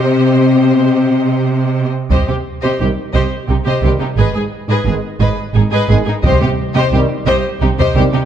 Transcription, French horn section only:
X:1
M:6/8
L:1/16
Q:3/8=58
K:Cm
V:1 name="French horn section"
C8- C2 z2 | z4 [CE] z4 z [CE] z | z4 [_CE] z4 z [CE] z | z4 [CE] z4 z [CE] z |]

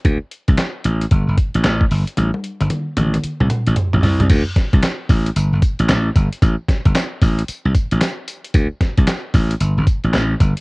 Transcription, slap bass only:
X:1
M:4/4
L:1/16
Q:"Swing 16ths" 1/4=113
K:Ddor
V:1 name="Slap bass" clef=bass
D,, z2 C,, z2 A,,,2 G,,, G,,, z A,,, A,,,2 G,,, z | A,,, z2 G,,, z2 A,,,2 z C,, z A,,, z A,,, C,, C,, | D,, z2 C,, z2 A,,,2 G,,, G,,, z A,,, A,,,2 G,,, z | A,,, z2 G,,, z2 A,,,2 z C,, z A,,, z4 |
D,, z2 C,, z2 A,,,2 G,,, G,,, z A,,, A,,,2 G,,, z |]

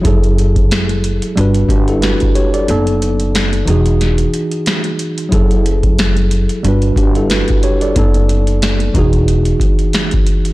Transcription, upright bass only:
X:1
M:4/4
L:1/16
Q:"Swing 16ths" 1/4=91
K:E
V:1 name="Upright bass" clef=bass
F,,,6- F,,, z =G,,,2 G,,,3 z3 | F,,,6 E,,,4 z6 | F,,,6- F,,, z =G,,,2 G,,,3 z3 | F,,,6 E,,,4 z6 |]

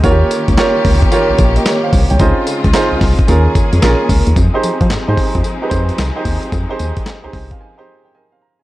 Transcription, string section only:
X:1
M:4/4
L:1/8
Q:"Swing 16ths" 1/4=111
K:Ebmix
V:1 name="String section"
[E,B,DG]8 | [D,A,CF]4 [E,B,DA]4 | [F,A,CE]8- | [F,A,CE]8 |]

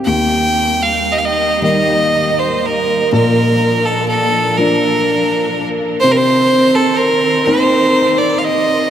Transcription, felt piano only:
X:1
M:6/8
L:1/8
Q:3/8=41
K:Eblyd
V:1 name="Felt piano" clef=bass
E,,3 [E,G,B,]3 | B,,3 [F,B,D]3 | C,3 [B,CE]3 |]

